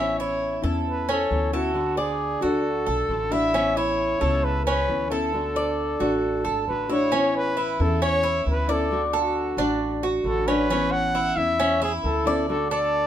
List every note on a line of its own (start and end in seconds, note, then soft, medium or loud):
0.00 0.57 A1 medium
0.00 0.62 E3 medium
0.00 0.63 B3 medium
0.00 0.18 C#4 medium
0.00 0.62 C#4 medium
0.00 0.61 E4 medium
0.00 0.19 E5 medium
0.20 0.63 E4 medium
0.20 0.61 C#5 medium
0.62 1.26 E2 medium
0.62 1.30 B3 medium
0.62 1.29 C#4 medium
0.62 1.29 E4 medium
0.62 1.07 A4 medium
0.88 1.12 B4 medium
1.09 1.52 C#4 medium
1.09 1.53 A4 medium
1.30 2.36 D2 medium
1.30 1.52 E3 medium
1.30 1.52 B3 medium
1.30 1.53 C#4 medium
1.30 1.52 E4 medium
1.53 1.74 B3 medium
1.53 1.75 C#4 medium
1.53 1.74 E4 medium
1.53 2.00 F#4 medium
1.53 1.96 A4 medium
1.74 2.41 D3 medium
1.74 2.42 A3 medium
1.74 2.40 D4 medium
1.74 2.40 F#4 medium
1.97 2.44 G#4 medium
1.97 2.41 D5 medium
2.41 2.84 D2 medium
2.41 3.09 A3 medium
2.41 3.08 D4 medium
2.41 3.08 F#4 medium
2.41 2.86 F#4 medium
2.41 3.34 A4 medium
2.87 3.08 B1 medium
2.87 3.30 A4 medium
3.09 4.15 A1 medium
3.09 3.30 D3 soft
3.09 3.31 A3 soft
3.09 3.31 D4 medium
3.09 3.30 F#4 medium
3.31 3.54 A3 medium
3.31 3.53 D4 medium
3.31 3.53 E4 medium
3.31 3.53 F#4 medium
3.31 3.78 E5 loud
3.54 4.20 E3 medium
3.54 4.20 B3 medium
3.54 3.76 C#4 medium
3.54 4.20 C#4 medium
3.54 4.19 E4 medium
3.77 4.20 E4 medium
3.77 4.46 C#5 medium
4.20 4.85 C#2 medium
4.20 4.88 B3 medium
4.20 4.88 C#4 medium
4.20 4.87 E4 medium
4.20 4.64 A4 medium
4.44 4.65 B4 medium
4.66 5.10 C#4 medium
4.66 5.07 B4 medium
4.88 5.94 D2 medium
4.88 5.09 E3 medium
4.88 5.10 B3 medium
4.88 5.10 C#4 medium
4.88 5.09 E4 medium
5.10 5.32 B3 medium
5.10 5.33 C#4 medium
5.10 5.32 E4 medium
5.10 6.63 A4 medium
5.10 5.55 A4 medium
5.32 5.99 D3 medium
5.32 5.99 A3 medium
5.32 5.99 D4 medium
5.32 5.98 F#4 medium
5.56 5.99 D5 medium
5.99 6.42 A1 medium
5.99 6.67 A3 medium
5.99 6.67 D4 medium
5.99 6.66 F#4 medium
5.99 6.44 F#4 medium
6.45 6.66 G#1 medium
6.45 6.88 A4 medium
6.68 7.73 A1 medium
6.68 6.89 D3 soft
6.68 6.90 A3 soft
6.68 6.89 D4 medium
6.68 6.88 F#4 medium
6.68 6.88 B4 medium
6.89 7.12 A3 medium
6.89 7.11 D4 medium
6.89 7.11 E4 medium
6.89 7.11 F#4 medium
6.89 7.32 C#5 loud
7.11 7.78 E3 medium
7.11 7.78 B3 medium
7.11 7.55 C#4 medium
7.11 7.79 C#4 medium
7.11 7.78 E4 medium
7.36 7.83 B4 loud
7.57 8.00 E4 medium
7.80 8.43 E2 medium
7.80 8.45 B3 medium
7.80 8.46 C#4 medium
7.80 8.46 E4 medium
7.80 8.03 A4 medium
8.02 8.23 C#4 medium
8.02 8.44 C#5 loud
8.23 8.67 E4 medium
8.46 9.52 D2 medium
8.46 8.68 E3 medium
8.46 8.68 B3 medium
8.46 8.68 C#4 medium
8.46 8.67 E4 medium
8.50 8.73 B4 medium
8.68 8.90 B3 medium
8.68 8.91 C#4 medium
8.68 8.90 E4 medium
8.68 9.03 A4 medium
8.68 9.12 D5 medium
8.91 9.57 D3 medium
8.91 9.60 A3 medium
8.91 9.58 D4 medium
8.91 9.57 F#4 medium
9.13 10.00 F#4 medium
9.13 9.57 A4 medium
9.57 10.21 A1 medium
9.57 10.25 A3 medium
9.57 10.02 D4 medium
9.57 10.25 D4 medium
9.57 10.25 F#4 medium
10.03 10.47 F#4 medium
10.24 11.30 A1 medium
10.24 10.47 D3 medium
10.24 10.47 A3 medium
10.24 10.48 D4 medium
10.24 10.46 F#4 medium
10.24 10.49 A4 medium
10.47 10.70 A3 medium
10.47 10.69 C#4 medium
10.47 10.70 D4 medium
10.47 10.69 F#4 medium
10.47 10.93 B4 loud
10.70 11.36 E3 medium
10.70 11.37 B3 medium
10.70 11.14 C#4 medium
10.70 11.37 C#4 medium
10.70 11.36 E4 medium
10.91 11.38 F#5 loud
11.15 11.58 E4 medium
11.37 12.00 E2 medium
11.37 12.04 B3 medium
11.37 12.04 C#4 medium
11.37 12.04 E4 medium
11.37 11.82 E5 loud
11.60 11.81 C#4 medium
11.82 12.25 E4 medium
11.82 11.93 G#4 medium
12.04 13.07 D2 medium
12.04 12.26 E3 medium
12.04 12.26 B3 medium
12.04 12.26 C#4 medium
12.04 12.24 E4 medium
12.04 12.46 A4 medium
12.26 12.49 B3 medium
12.26 12.48 C#4 medium
12.26 12.48 E4 medium
12.26 12.70 D5 medium
12.48 13.07 D3 medium
12.48 13.07 A3 medium
12.48 13.07 D4 medium
12.48 13.07 F#4 medium
12.48 12.70 A4 medium
12.71 13.07 A4 medium
12.71 13.07 D5 loud